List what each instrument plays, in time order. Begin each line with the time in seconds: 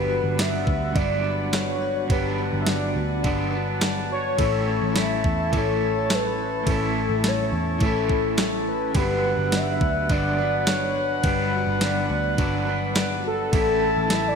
Already playing: picked electric bass G1, clean electric guitar G2 D3 F#3 B3 D4, twelve-string acoustic guitar G3, brass ensemble D4 B4 F#5, soft synth lead B4
0.10 twelve-string acoustic guitar F#4
0.24 picked electric bass G1
0.38 clean electric guitar D3 F#3 B3, twelve-string acoustic guitar D4, soft synth lead E5, snare, ride, tambourine
0.42 clean electric guitar D4
0.67 picked electric bass D2, twelve-string acoustic guitar F#4, kick
0.92 picked electric bass G1, clean electric guitar G2 D3, twelve-string acoustic guitar D4, soft synth lead D5, kick, ride
0.97 clean electric guitar F#3 B3 D4
1.24 twelve-string acoustic guitar B4
1.53 twelve-string acoustic guitar D4, soft synth lead C#5, snare, ride, tambourine
1.82 twelve-string acoustic guitar F#4
2.07 picked electric bass G1, clean electric guitar G2 D3, twelve-string acoustic guitar G3, kick, ride
2.11 clean electric guitar F#3 B3 D4, soft synth lead B4, brass ensemble A5
2.38 twelve-string acoustic guitar F#4
2.53 picked electric bass G1
2.62 soft synth lead E5
2.66 twelve-string acoustic guitar D4, soft synth lead D5, snare, ride, tambourine
2.95 picked electric bass D2, twelve-string acoustic guitar F#4
3.23 picked electric bass G1, clean electric guitar G2 D3 F#3 B3 D4, twelve-string acoustic guitar D4, kick, ride
3.51 clean electric guitar B3 D4, twelve-string acoustic guitar B4
3.55 clean electric guitar F#3
3.81 twelve-string acoustic guitar D4, snare, ride, tambourine
4.10 twelve-string acoustic guitar F#4, soft synth lead C#5
4.37 picked electric bass A1, clean electric guitar A2 E3 A3 C#4 E4, twelve-string acoustic guitar A2, brass ensemble E4 A4 C#5, kick, ride
4.67 twelve-string acoustic guitar E4
4.82 picked electric bass A1
4.93 clean electric guitar E3 A3, twelve-string acoustic guitar C#4, snare, ride, tambourine
4.97 clean electric guitar C#4 E4, soft synth lead E5
5.24 picked electric bass E2, twelve-string acoustic guitar E4, kick
5.50 picked electric bass A1, clean electric guitar A2 E3 A3, twelve-string acoustic guitar A3, kick, ride
5.56 clean electric guitar C#4 E4, soft synth lead C#5
5.81 twelve-string acoustic guitar A4
6.10 snare, ride, tambourine
6.14 soft synth lead B4
6.38 twelve-string acoustic guitar E4
6.63 picked electric bass A1, clean electric guitar A2 E3, twelve-string acoustic guitar A2, kick, ride
6.67 clean electric guitar A3 C#4 E4
6.72 soft synth lead A4
6.95 twelve-string acoustic guitar E4
7.10 picked electric bass A1
7.24 twelve-string acoustic guitar C#4, snare, ride, tambourine
7.28 soft synth lead C#5
7.52 picked electric bass E2, twelve-string acoustic guitar E4
7.78 picked electric bass A1, clean electric guitar A2 E3, twelve-string acoustic guitar A3, kick, ride
7.83 clean electric guitar A3 C#4 E4
8.10 twelve-string acoustic guitar A4, kick
8.38 twelve-string acoustic guitar C#4, snare, ride, tambourine
8.67 twelve-string acoustic guitar E4, soft synth lead B4
8.93 picked electric bass G1, clean electric guitar G2 D3, twelve-string acoustic guitar G3, brass ensemble D4 B4 F#5, kick, ride
8.97 clean electric guitar F#3 B3 D4
9.24 twelve-string acoustic guitar F#4
9.37 picked electric bass G1
9.52 twelve-string acoustic guitar D4, soft synth lead E5, snare, ride, tambourine
9.81 picked electric bass D2, twelve-string acoustic guitar F#4, kick
10.09 picked electric bass G1, clean electric guitar G2 D3 F#3 B3 D4, twelve-string acoustic guitar D4, soft synth lead D5, kick, ride
10.37 clean electric guitar B3 D4, twelve-string acoustic guitar B4
10.42 clean electric guitar F#3
10.67 twelve-string acoustic guitar D4, soft synth lead C#5, snare, ride, tambourine
10.96 twelve-string acoustic guitar F#4
11.23 picked electric bass G1, clean electric guitar G2 D3 F#3 B3 D4, twelve-string acoustic guitar G3, soft synth lead B4, kick, ride
11.53 twelve-string acoustic guitar F#4
11.67 picked electric bass G1
11.80 clean electric guitar D3 F#3 B3, twelve-string acoustic guitar D4, soft synth lead D5, snare, ride, tambourine
11.85 clean electric guitar D4
12.09 picked electric bass D2, twelve-string acoustic guitar F#4
12.37 picked electric bass G1, clean electric guitar G2 D3 F#3 B3 D4, twelve-string acoustic guitar D4, kick, ride
12.65 clean electric guitar B3 D4, twelve-string acoustic guitar B4
12.70 clean electric guitar F#3
12.95 twelve-string acoustic guitar D4, snare, ride, tambourine
13.24 twelve-string acoustic guitar F#4, soft synth lead A4
13.51 picked electric bass A1, clean electric guitar A2 E3 A3 C#4 E4, twelve-string acoustic guitar A2, brass ensemble E4 A4 E5 A5, kick, ride
13.81 twelve-string acoustic guitar E4
13.96 picked electric bass A1
14.07 clean electric guitar E3 A3, snare, ride, tambourine
14.13 clean electric guitar E4, soft synth lead E5
14.28 soft synth lead D5